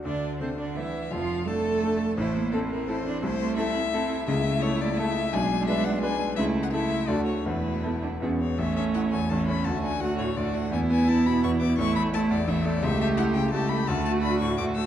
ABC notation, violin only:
X:1
M:3/4
L:1/16
Q:1/4=170
K:Dm
V:1 name="Violin"
d4 c2 d2 e4 | f4 a8 | c4 A2 B2 c4 | c4 e8 |
[K:A] e4 c2 d2 e4 | g4 e2 f2 g4 | e3 f e4 d2 c2 | B8 z2 c2 |
e2 e2 f2 g2 a2 b2 | a2 g2 f2 c2 d2 f2 | g2 g2 a2 b2 c'2 d'2 | c'2 b2 a2 d2 e2 d2 |
[K:D] e2 e2 f2 g2 a2 b2 | a2 a2 b2 c'2 d'2 e'2 |]